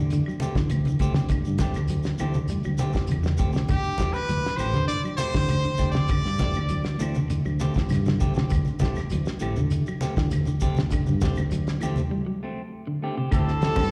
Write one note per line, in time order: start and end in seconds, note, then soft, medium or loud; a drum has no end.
0.00 0.22 D3 medium
0.10 0.23 D3 medium
0.10 closed hi-hat medium
0.10 shekere medium
0.26 0.49 F#3 medium
0.26 claves medium
0.26 shekere soft
0.40 0.58 A3 medium
0.40 0.58 C4 medium
0.40 0.59 G4 medium
0.40 closed hi-hat soft
0.40 high conga medium
0.40 shekere medium
0.55 0.68 D3 medium
0.55 0.79 E3 medium
0.55 kick medium
0.55 snare medium
0.55 closed hi-hat soft
0.55 shekere soft
0.69 0.84 D2 medium
0.69 closed hi-hat medium
0.69 high conga medium
0.69 claves medium
0.69 shekere medium
0.85 1.08 D3 medium
0.85 closed hi-hat soft
0.85 high conga medium
0.85 shekere soft
0.99 1.38 D2 medium
0.99 1.15 A3 medium
0.99 1.15 C4 medium
0.99 1.14 G4 medium
0.99 kick medium
0.99 closed hi-hat medium
0.99 high conga medium
0.99 shekere medium
1.14 1.27 C3 medium
1.14 1.33 C4 soft
1.14 1.33 G4 soft
1.14 snare medium
1.14 high conga medium
1.14 shekere soft
1.28 1.52 D3 medium
1.28 kick medium
1.28 closed hi-hat medium
1.28 low conga medium
1.28 claves medium
1.28 shekere medium
1.45 1.59 G2 medium
1.45 shekere soft
1.58 1.78 A3 medium
1.58 1.78 C4 medium
1.58 1.79 G4 medium
1.58 muted clean electric guitar stroke medium
1.58 kick medium
1.58 snare medium
1.58 closed hi-hat soft
1.58 high conga medium
1.58 low conga medium
1.58 shekere medium
1.74 2.14 D2 medium
1.74 snare soft
1.74 closed hi-hat soft
1.74 claves medium
1.74 shekere soft
1.88 2.12 F#3 medium
1.88 closed hi-hat medium
1.88 shekere medium
2.03 snare medium
2.03 closed hi-hat soft
2.03 shekere soft
2.18 2.46 D2 medium
2.18 2.42 E3 medium
2.18 2.38 A3 medium
2.18 2.38 C4 medium
2.18 2.38 G4 medium
2.18 closed hi-hat soft
2.18 claves medium
2.18 shekere medium
2.34 closed hi-hat soft
2.34 high conga medium
2.34 shekere soft
2.48 2.61 G3 medium
2.48 closed hi-hat medium
2.48 shekere medium
2.64 2.91 D2 medium
2.64 2.87 F#3 medium
2.64 claves medium
2.64 shekere soft
2.78 2.95 A3 medium
2.78 2.94 C4 medium
2.78 2.93 G4 medium
2.78 closed hi-hat medium
2.78 high conga medium
2.78 shekere medium
2.93 3.16 E3 medium
2.93 3.13 C4 soft
2.93 3.12 G4 soft
2.93 kick medium
2.93 snare medium
2.93 closed hi-hat soft
2.93 shekere soft
3.07 3.37 E2 medium
3.07 closed hi-hat medium
3.07 high conga medium
3.07 shekere medium
3.12 claves medium
3.23 3.46 D3 medium
3.23 snare medium
3.23 shekere soft
3.37 3.67 D2 medium
3.37 3.54 A3 medium
3.37 3.54 C4 medium
3.37 3.52 G4 medium
3.37 kick medium
3.37 closed hi-hat soft
3.37 shekere medium
3.52 3.65 C3 medium
3.52 3.73 C4 soft
3.52 3.72 G4 soft
3.52 snare medium
3.52 shekere soft
3.68 3.91 D3 medium
3.68 4.15 G4 medium
3.68 kick medium
3.68 closed hi-hat medium
3.68 low conga medium
3.68 claves medium
3.68 shekere medium
3.83 closed hi-hat soft
3.83 shekere soft
3.98 4.22 E3 medium
3.98 4.18 A3 medium
3.98 4.18 C4 medium
3.98 4.19 G4 medium
3.98 kick medium
3.98 snare medium
3.98 closed hi-hat soft
3.98 high conga medium
3.98 low conga medium
3.98 shekere medium
4.13 4.58 B4 medium
4.13 claves medium
4.13 shekere soft
4.29 4.43 D2 medium
4.29 4.51 F#3 medium
4.29 closed hi-hat medium
4.29 shekere medium
4.43 snare medium
4.43 shekere soft
4.57 4.72 A1 medium
4.57 4.81 E3 medium
4.57 4.78 A3 medium
4.57 4.78 C4 medium
4.57 4.78 G4 medium
4.57 4.87 C5 medium
4.57 closed hi-hat soft
4.57 claves medium
4.57 shekere medium
4.74 5.00 D3 medium
4.74 snare soft
4.74 closed hi-hat soft
4.74 high conga medium
4.74 low conga medium
4.74 shekere soft
4.88 5.00 D3 medium
4.88 5.02 D5 medium
4.88 closed hi-hat medium
4.88 shekere medium
5.04 5.27 F#3 medium
5.04 claves medium
5.04 shekere soft
5.17 5.35 A3 medium
5.17 5.35 C4 medium
5.17 5.34 G4 medium
5.17 5.90 C5 loud
5.17 snare soft
5.17 closed hi-hat medium
5.17 high conga medium
5.17 shekere medium
5.33 5.48 D3 medium
5.33 5.57 E3 medium
5.33 5.54 C4 soft
5.33 5.53 G4 soft
5.33 kick medium
5.33 snare medium
5.33 closed hi-hat soft
5.33 shekere soft
5.48 5.63 D2 medium
5.48 closed hi-hat medium
5.48 high conga medium
5.48 claves medium
5.48 shekere medium
5.63 5.87 D3 medium
5.63 closed hi-hat soft
5.63 shekere soft
5.77 6.18 D2 medium
5.77 5.95 A3 medium
5.77 5.94 C4 medium
5.77 5.93 G4 medium
5.77 kick medium
5.77 snare soft
5.77 closed hi-hat soft
5.77 high conga medium
5.77 shekere medium
5.91 6.14 C4 soft
5.91 6.13 G4 soft
5.91 7.10 D5 loud
5.91 snare medium
5.91 high conga medium
5.91 shekere soft
5.96 6.07 C3 medium
6.07 6.32 D3 medium
6.07 kick medium
6.07 closed hi-hat medium
6.07 low conga medium
6.07 claves medium
6.07 shekere medium
6.23 6.39 G2 medium
6.23 snare soft
6.23 shekere soft
6.38 6.62 E3 medium
6.38 6.58 A3 medium
6.38 6.59 C4 medium
6.38 6.59 G4 medium
6.38 kick medium
6.38 snare medium
6.38 closed hi-hat medium
6.38 high conga medium
6.38 low conga medium
6.38 shekere medium
6.53 closed hi-hat soft
6.53 claves medium
6.53 shekere soft
6.57 6.95 D2 medium
6.69 6.93 F#3 medium
6.69 closed hi-hat medium
6.69 shekere medium
6.84 snare medium
6.84 closed hi-hat soft
6.84 shekere soft
6.99 7.26 D2 medium
6.99 7.23 E3 medium
6.99 7.18 A3 medium
6.99 7.19 C4 medium
6.99 muted clean electric guitar stroke medium
6.99 closed hi-hat soft
6.99 claves medium
6.99 shekere medium
7.14 closed hi-hat soft
7.14 high conga medium
7.14 shekere soft
7.30 7.42 D3 medium
7.30 closed hi-hat medium
7.30 shekere medium
7.45 7.71 D2 medium
7.45 7.68 F#3 medium
7.45 claves medium
7.45 shekere soft
7.60 7.76 A3 medium
7.60 7.75 C4 medium
7.60 7.74 G4 medium
7.60 snare soft
7.60 closed hi-hat soft
7.60 high conga medium
7.60 shekere medium
7.74 7.99 E3 medium
7.74 7.95 C4 soft
7.74 7.94 G4 medium
7.74 kick medium
7.74 snare medium
7.74 closed hi-hat soft
7.74 shekere soft
7.89 8.16 G2 medium
7.89 snare soft
7.89 closed hi-hat medium
7.89 high conga medium
7.89 claves medium
7.89 shekere medium
8.05 8.29 D3 medium
8.05 snare medium
8.05 high conga medium
8.05 shekere soft
8.19 8.34 D2 medium
8.19 8.36 A3 medium
8.19 8.36 C4 medium
8.19 8.35 G4 medium
8.19 kick medium
8.19 closed hi-hat medium
8.19 high conga medium
8.19 shekere medium
8.34 8.62 D2 medium
8.34 8.48 C3 medium
8.34 8.55 C4 soft
8.34 8.54 G4 soft
8.34 snare medium
8.34 shekere soft
8.50 8.73 D3 medium
8.50 kick medium
8.50 closed hi-hat medium
8.50 low conga medium
8.50 claves medium
8.50 shekere medium
8.65 closed hi-hat soft
8.65 high conga medium
8.65 shekere soft
8.79 9.04 E3 medium
8.79 8.99 A3 medium
8.79 9.00 C4 medium
8.79 9.00 G4 medium
8.79 kick medium
8.79 closed hi-hat soft
8.79 high conga medium
8.79 low conga medium
8.79 shekere medium
8.83 snare medium
8.95 snare soft
8.95 claves medium
8.95 shekere soft
9.10 9.25 D2 loud
9.10 9.34 F#3 medium
9.10 closed hi-hat medium
9.10 shekere medium
9.25 snare medium
9.25 shekere soft
9.39 9.55 A1 medium
9.39 9.64 E3 medium
9.39 9.60 A3 medium
9.39 9.60 C4 medium
9.39 9.60 G4 medium
9.39 closed hi-hat soft
9.39 claves medium
9.39 shekere medium
9.56 9.83 D3 medium
9.56 closed hi-hat soft
9.56 high conga medium
9.56 low conga medium
9.56 shekere soft
9.71 9.83 D3 medium
9.71 closed hi-hat medium
9.71 shekere medium
9.86 10.10 F#3 medium
9.86 claves medium
9.86 shekere soft
10.01 10.17 A3 medium
10.01 10.17 C4 medium
10.01 10.16 G4 medium
10.01 snare soft
10.01 closed hi-hat soft
10.01 high conga medium
10.01 shekere medium
10.17 10.30 D3 medium
10.17 10.40 E3 medium
10.17 10.35 G4 medium
10.17 kick medium
10.17 snare medium
10.17 closed hi-hat soft
10.17 shekere soft
10.31 10.45 D2 medium
10.31 closed hi-hat medium
10.31 high conga medium
10.31 claves medium
10.31 shekere medium
10.45 10.70 D3 medium
10.45 closed hi-hat soft
10.45 high conga medium
10.45 shekere soft
10.60 11.00 D2 medium
10.60 10.80 A3 medium
10.60 10.80 C4 medium
10.60 10.80 G4 medium
10.60 kick medium
10.60 closed hi-hat medium
10.60 shekere medium
10.75 10.89 C3 medium
10.75 snare medium
10.75 high conga medium
10.75 shekere soft
10.90 11.15 D3 medium
10.90 kick medium
10.90 closed hi-hat medium
10.90 low conga medium
10.90 claves medium
10.90 shekere medium
11.06 11.21 G2 medium
11.06 high conga medium
11.06 shekere soft
11.21 11.40 A3 medium
11.21 11.40 C4 medium
11.21 11.41 G4 medium
11.21 kick medium
11.21 snare medium
11.21 closed hi-hat medium
11.21 high conga loud
11.21 low conga medium
11.21 shekere medium
11.35 11.76 D2 medium
11.35 closed hi-hat soft
11.35 claves medium
11.35 shekere soft
11.51 11.74 F#3 medium
11.51 closed hi-hat medium
11.51 shekere medium
11.67 snare medium
11.67 closed hi-hat soft
11.67 shekere soft
11.81 11.96 D2 medium
11.81 12.03 E3 medium
11.81 12.00 A3 medium
11.81 12.01 C4 medium
11.81 12.01 G4 medium
11.81 closed hi-hat soft
11.81 claves medium
11.81 shekere medium
11.96 closed hi-hat soft
11.96 high conga medium
11.96 low conga medium
11.96 shekere soft
12.11 12.23 G3 medium
12.26 12.49 F#3 medium
12.43 12.61 A3 medium
12.43 12.61 C4 medium
12.87 13.09 D3 medium
13.02 13.17 A3 medium
13.02 13.18 C4 medium
13.02 13.16 G4 medium
13.17 13.28 C3 medium
13.17 13.32 C4 soft
13.17 13.32 G4 medium
13.31 13.70 D2 medium
13.31 13.54 D3 medium
13.31 13.51 A3 medium
13.31 13.51 C4 medium
13.31 13.51 G4 medium
13.31 13.91 A4 loud
13.31 kick medium
13.31 closed hi-hat medium
13.31 claves medium
13.31 shekere medium
13.36 13.91 A2 medium
13.36 13.91 A3 medium
13.48 snare soft
13.61 13.84 E3 medium
13.61 13.77 A3 medium
13.61 13.77 C4 medium
13.61 13.76 G4 medium
13.61 snare medium
13.61 closed hi-hat medium
13.61 shekere soft
13.76 13.90 G2 medium
13.76 13.91 C4 soft
13.76 13.91 G4 soft
13.76 kick medium
13.76 snare medium
13.76 high conga loud
13.76 claves medium